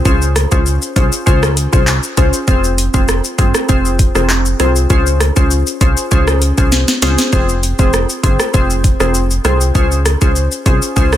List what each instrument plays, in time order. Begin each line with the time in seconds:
0.05 analog synth bass C#2, synth pluck C#4 F4 G#4 C5, kick, shaker
0.22 shaker
0.36 cross-stick, closed hi-hat, shaker
0.51 analog synth bass C#2, synth pluck C#4 F4 G#4 C5, kick, shaker
0.66 shaker
0.82 shaker
0.96 analog synth bass C2, synth pluck C#4 F4 G#4 C5, kick, closed hi-hat, shaker
1.12 shaker
1.26 analog synth bass C#2, synth pluck C#4 F4 G#4 C5, kick, shaker
1.43 cross-stick, shaker
1.57 closed hi-hat, shaker
1.73 analog synth bass C2, synth pluck C#4 F4 G#4 C5, kick, shaker
1.87 clap, shaker
2.03 shaker
2.17 analog synth bass C#2, synth pluck C#4 F4 G#4 C5, kick, closed hi-hat, shaker
2.33 shaker
2.47 analog synth bass F1, synth pluck C4 F4 G#4 C5, kick, shaker
2.64 shaker
2.78 closed hi-hat, shaker
2.94 analog synth bass F1, synth pluck C4 F4 G#4 C5, kick, shaker
3.08 cross-stick, shaker
3.24 shaker
3.38 analog synth bass G1, synth pluck C4 F4 G#4 C5, kick, closed hi-hat, shaker
3.55 cross-stick, shaker
3.69 analog synth bass F1, synth pluck C4 F4 G#4 C5, kick, shaker
3.85 shaker
3.99 kick, closed hi-hat, shaker
4.15 analog synth bass F1, synth pluck C4 F4 G#4 C5, cross-stick, shaker
4.29 clap, shaker
4.46 shaker
4.60 analog synth bass C2, synth pluck C4 F4 G#4 C5, cross-stick, closed hi-hat, shaker
4.76 shaker
4.90 analog synth bass C#2, synth pluck C#4 F4 G#4 C5, kick, shaker
5.06 shaker
5.20 cross-stick, closed hi-hat, shaker
5.36 analog synth bass C#2, synth pluck C#4 F4 G#4 C5, kick, shaker
5.51 shaker
5.67 shaker
5.81 analog synth bass C2, synth pluck C#4 F4 G#4 C5, kick, closed hi-hat, shaker
5.97 shaker
6.11 analog synth bass C#2, synth pluck C#4 F4 G#4 C5, kick, shaker
6.28 cross-stick, shaker
6.42 closed hi-hat, shaker
6.58 analog synth bass C2, synth pluck C#4 F4 G#4 C5, kick, shaker
6.72 snare, shaker
6.88 snare, shaker
7.02 analog synth bass C#2, synth pluck C#4 F4 G#4 C5, snare, closed hi-hat, shaker
7.18 snare, shaker
7.32 analog synth bass F1, synth pluck C4 F4 G#4 C5, kick, shaker
7.49 shaker
7.63 closed hi-hat, shaker
7.79 analog synth bass F1, synth pluck C4 F4 G#4 C5, kick, shaker
7.93 cross-stick, shaker
8.09 shaker
8.23 analog synth bass G1, synth pluck C4 F4 G#4 C5, kick, closed hi-hat, shaker
8.40 cross-stick, shaker
8.54 analog synth bass F1, synth pluck C4 F4 G#4 C5, kick, shaker
8.70 shaker
8.84 kick, closed hi-hat, shaker
9.00 analog synth bass F1, synth pluck C4 F4 G#4 C5, cross-stick, shaker
9.15 shaker
9.31 shaker
9.45 analog synth bass C2, synth pluck C4 F4 G#4 C5, cross-stick, closed hi-hat, shaker
9.61 shaker
9.75 analog synth bass C#2, synth pluck C#4 F4 G#4 C5, kick, shaker
9.91 shaker
10.06 cross-stick, closed hi-hat, shaker
10.21 analog synth bass C#2, synth pluck C#4 F4 G#4 C5, kick, shaker
10.36 shaker
10.52 shaker
10.66 analog synth bass C2, synth pluck C#4 F4 G#4 C5, kick, closed hi-hat, shaker
10.82 shaker
10.96 analog synth bass C#2, synth pluck C#4 F4 G#4 C5, kick, shaker
11.13 cross-stick, shaker